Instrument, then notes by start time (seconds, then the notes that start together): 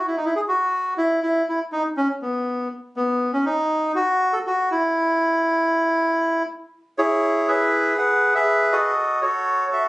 bandoneon
0.07 E4
0.17 D#4
0.25 E4
0.36 G#4
0.48 F#4
0.98 E4
1.23 E4
1.49 E4
1.72 D#4
1.97 C#4
2.22 B3
2.96 B3
3.33 C#4
3.46 D#4
3.95 F#4
4.33 A4
4.47 F#4
4.71 E4
6.98 E4 G#4 C#5
7.48 G#4 B4 E5
7.98 B4 F#5
8.35 G#4 B4 E5
8.72 F#4 A4 D#5
9.22 F#4 A4 C#5
9.73 E5